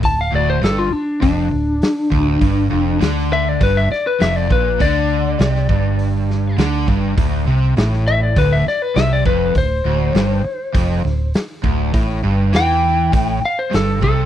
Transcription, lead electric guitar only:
\new Staff \with { instrumentName = "Lead electric guitar" } { \time 4/4 \key g \major \tempo 4 = 101 a''16 f''16 d''16 c''16 a'16 f'16 d'8 d'2~ | d'4 r8 e''16 d''16 b'16 e''16 d''16 b'16 e''16 d''16 b'8 | d''2. r4 | r4. e''16 d''16 b'16 e''16 d''16 b'16 e''16 d''16 b'8 |
c''2. r4 | r4 g''4. f''16 c''16 a'8 a'8 | }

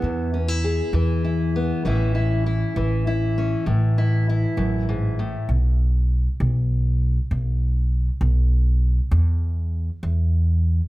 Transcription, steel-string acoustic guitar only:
\new Staff \with { instrumentName = "Steel-string acoustic guitar" } { \time 6/8 \key a \major \tempo 4. = 66 << { r8 cis'16 e'16 gis'4 e'8 b8 | <e cis' e'>8 e'8 e'4 e'8 cis'8 | r8 e'8 e'2 | r2. |
r2. | r2. | } \\ { <e, e>4. e4. | a,4. e4. | a,4. fis,8 gis,8 a,8 | r2. |
r2. | r2. | } >> }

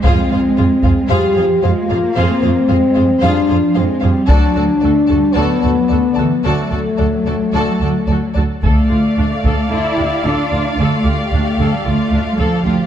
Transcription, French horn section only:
\new Staff \with { instrumentName = "French horn section" } { \time 4/4 \key d \mixolydian \tempo 4 = 112 c'2 g'4 f'4 | c'2 d'4 c'4 | d'2 b2 | a2.~ a8 r8 |
\key d \minor r1 | r1 | }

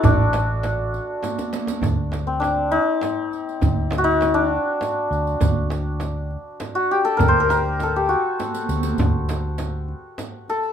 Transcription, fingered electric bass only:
\new Staff \with { instrumentName = "Fingered electric bass" } { \clef bass \time 3/4 \tempo 4 = 101 a,,2 r4 | d,2 r4 | d,2 r8 d,8 | d,2 r4 |
d,2 r8 d,8 | d,2 r4 | }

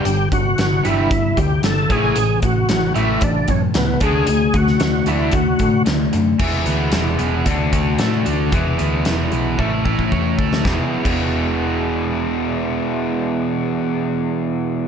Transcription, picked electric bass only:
\new Staff \with { instrumentName = "Picked electric bass" } { \clef bass \time 4/4 \key e \mixolydian \tempo 4 = 113 g,,8 g,,8 g,,8 g,,8 g,,8 d,8 g,,8 a,,8 | a,,8 a,,8 a,,8 a,,8 a,,8 fis,8 cis,8 d,8 | d,8 d,8 d,8 d,8 d,8 a,8 d,8 fis,8 | e,,8 d,8 e,,8 e,,8 d,8 d,8 a,8 d,8 |
e,,8 d,8 e,,8 b,,8 a,,8 a,,8 e,8 d,8 | e,,16 r8 e,,2.~ e,,16~ | e,,1 | }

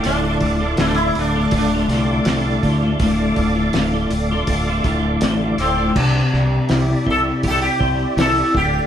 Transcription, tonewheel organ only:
\new Staff \with { instrumentName = "Tonewheel organ" } { \time 4/4 \key c \mixolydian \tempo 4 = 81 << { <a' f'' d'''>1~ | <a' f'' d'''>1 | <g' e''>2.~ <g' e''>8 <a' f''>8 | } \\ { d''1~ | d''1 | d''1 | } >> }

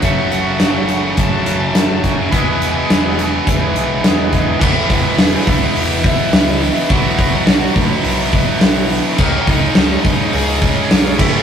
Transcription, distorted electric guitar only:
\new Staff \with { instrumentName = "Distorted electric guitar" } { \clef bass \time 4/4 \key e \major \tempo 4 = 105 <fis, cis fis a cis'>1 | <e gis b e'>1 | <e gis b e'>1 | <b, e fis b e'>1 |
<cis gis cis' dis'>2.~ <cis gis cis' dis'>8 <a, e a cis' e'>8 | }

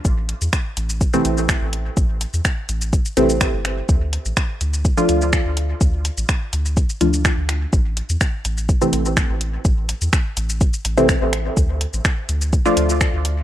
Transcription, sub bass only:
\new Staff \with { instrumentName = "Sub bass" } { \clef bass \time 4/4 \key d \minor \tempo 4 = 125 a,,8 r16 e,16 r8 a,,8 r8 a,,8 r16 a,,8 r16 | a,,8 r16 e,16 r8 a,,8 r8 a,,8 r16 g,,8 r16 | d,8 r16 a,,16 r8 d,8 r8 d,8 r16 d,8 r16 | d,8 r16 a,,16 r8 d,8 r8 d,8 r16 d,8 r16 |
a,,8 r16 e,16 r8 a,,8 r8 a,,8 r16 a,,8 r16 | a,,8 r16 e,16 r8 a,,8 r8 a,,8 r16 a,,8 r16 | d,8 r16 a,,16 r8 d,8 r8 d,8 r16 d,8 r16 | }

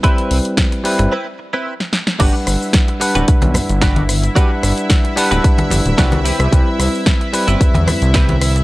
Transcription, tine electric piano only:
\new Staff \with { instrumentName = "Tine electric piano" } { \time 4/4 \key g \major \tempo 4 = 111 <g c' e' b'>4. <g c' e' b'>8 r2 | <g d' b' fis''>4. <g d' b' fis''>2~ <g d' b' fis''>8 | <g d' b' fis''>4. <g d' b' fis''>2 r8 | <g c' e' b'>4. <g c' e' b'>2~ <g c' e' b'>8 | }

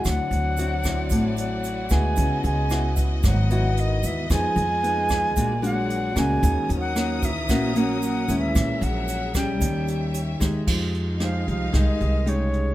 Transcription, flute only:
\new Staff \with { instrumentName = "Flute" } { \time 4/4 \key dis \phrygian \tempo 4 = 113 fis''2~ fis''8 fis''4 gis''8~ | gis''8 gis''4 r8 fis''8 fis''8 dis''8 e''8 | aes''2~ aes''8 fis''4 gis''8~ | \tuplet 3/2 { gis''8. r16 fis''8~ } fis''8 e''4 fis''8 \tuplet 3/2 { fis''4 e''8~ } |
e''8 fis''4 g''2 r8 | \key f \minor r4 f''8 f''8 ees''4 des''4 | }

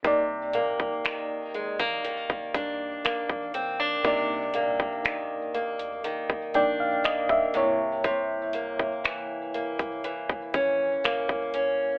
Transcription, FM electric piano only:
\new Staff \with { instrumentName = "FM electric piano" } { \time 4/4 \key c \minor \tempo 4 = 60 << { r1 | r2 r8 g''16 f''16 ees''16 e''8. | r1 | } \\ { <c bes ees' d''>1 | <c bes ees' d''>2~ <c bes ees' d''>8 <c bes ees' d''>4 <c bes e' des''>8~ | <c bes e' des''>2.~ <c bes e' des''>8 r8 | } >> }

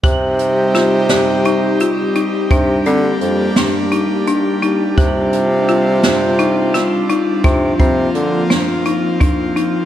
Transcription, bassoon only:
\new Staff \with { instrumentName = "Bassoon" } { \clef bass \time 7/8 \key c \minor \tempo 4 = 85 c2.~ c8 | c8 d8 f,8 r2 | c2.~ c8 | c8 c8 d8 r2 | }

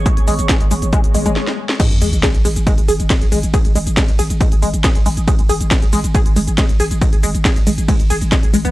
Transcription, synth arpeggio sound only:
\new Staff \with { instrumentName = "Synth arpeggio sound" } { \clef bass \time 4/4 \key gis \minor \tempo 4 = 138 gis16 r16 gis16 r16 gis'16 r16 gis16 r16 gis16 r16 gis16 gis16 r4 | gis16 r16 gis16 r16 gis'16 r16 gis16 r16 gis16 r16 gis'16 r16 gis16 r16 gis16 r16 | gis'16 r16 gis16 r16 gis16 r16 gis'16 r16 gis16 r16 gis16 r16 gis'16 r16 gis16 r16 | gis16 r16 gis'16 r16 gis16 r16 gis16 r16 gis'16 r16 gis16 r16 gis16 r16 gis'16 r16 |
gis16 r16 gis16 r16 gis'16 r16 gis16 r16 gis16 r16 gis'16 r16 gis16 r16 gis16 b16 | }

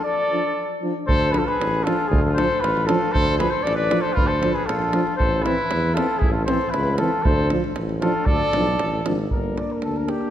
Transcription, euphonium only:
\new Staff \with { instrumentName = "Euphonium" } { \clef bass \time 2/4 \tempo 4 = 116 r8 f8 r8 f8 | r8 f8 r8 f8 | r8 f8 r8 f8 | r8 f8 r8 f8 |
r8 f8 r8 f8 | r8 e8 r8 e8 | r8 e8 r8 e8 | r8 f8 r8 f8 |
r8 f8 r8 f8 | bes2 | }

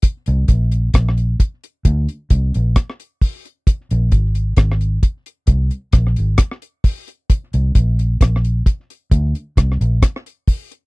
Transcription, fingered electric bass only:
\new Staff \with { instrumentName = "Fingered electric bass" } { \clef bass \time 4/4 \key bes \mixolydian \tempo 4 = 66 r16 c,16 bes,,8 bes,,8 r8 d,16 r16 c,16 bes,,16 r4 | r16 bes,,16 aes,,8 aes,,8 r8 c,16 r16 bes,,16 aes,,16 r4 | r16 c,16 bes,,8 bes,,8 r8 d,16 r16 c,16 bes,,16 r4 | }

